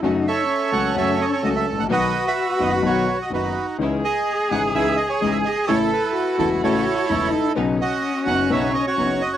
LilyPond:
<<
  \new Staff \with { instrumentName = "Bandoneon" } { \time 4/4 \key b \mixolydian \tempo 4 = 128 << { r8 e''4 fis''8 e''8 dis''16 cis''16 dis''16 e''8 fis''16 | dis''8. e''8. dis''8 cis''8. dis''16 b'8. r16 | r8 dis''4 fis''8 e''8 dis''16 cis''16 dis''16 e''16 dis''8 | cis''8 b'4 a'8 cis''4. r8 |
r8 dis''4 fis''8 e''8 dis''16 cis''8. dis''16 cis''16 | } \\ { r8 <a' cis''>4. <a' cis''>2 | <fis' b'>8. b'4~ b'16 fis'4 <dis' fis'>4 | r8 gis'4. gis'2 | <e' a'>8 e'4. <e' a'>2 |
r8 fis'4. cis''8. fis'4~ fis'16 | } >> }
  \new Staff \with { instrumentName = "Cello" } { \time 4/4 \key b \mixolydian dis'4 cis'2. | fis'2.~ fis'8 r8 | gis'1 | a'4 fis'2 e'8 dis'8 |
cis'1 | }
  \new Staff \with { instrumentName = "String section" } { \time 4/4 \key b \mixolydian <a cis' fis'>8 r4 <a cis' fis'>8 <a cis' fis'>8 r8 <a cis' fis'>8 r8 | <b dis' fis'>8 r4 <b dis' fis'>8 <b dis' fis'>8 r8 <b dis' fis'>8 r8 | <cis' dis' e'>8 r4 <cis' dis' e'>8 <cis' dis' e'>8 r8 <cis' dis' e'>8 r8 | <a cis' e'>8 r4 <a cis' e'>8 <a cis' e'>8 r8 <a cis' e'>8 r8 |
<b cis' dis'>8 r4 <b cis' dis'>8 <b cis' dis'>8 r8 <b cis' dis'>8 r8 | }
  \new Staff \with { instrumentName = "Grand piano" } { \clef bass \time 4/4 \key b \mixolydian <fis, cis fis a fis'>8 r4 <cis, cis fis a fis'>8 <fis, cis fis a fis'>8 r8 <cis, cis fis a fis'>8 r32 gis,,32 a,,32 ais,,32 | <b,, b, dis fis b fis'>8 r4 <fis,, fis, dis fis b fis'>8 <b,, b, dis fis b fis'>8 r8 <fis,, fis, dis fis b fis'>8 r8 | <cis, cis e gis dis'>8 r4 <gis,, gis, cis e gis dis'>8 <cis, cis e gis dis'>8 r8 <gis,, gis, cis e gis dis'>8 r8 | <a,, a, cis e a e'>8 r4 <e,, e, cis e a e'>8 <a,, a, cis e a e'>8 r8 <e,, e, cis e a e'>8 r8 |
<b,, b, cis fis b dis'>8 r4 <fis,, fis, cis fis b dis'>8 <b,, b, cis fis b dis'>8 r8 <fis,, fis, cis fis b dis'>8 r8 | }
>>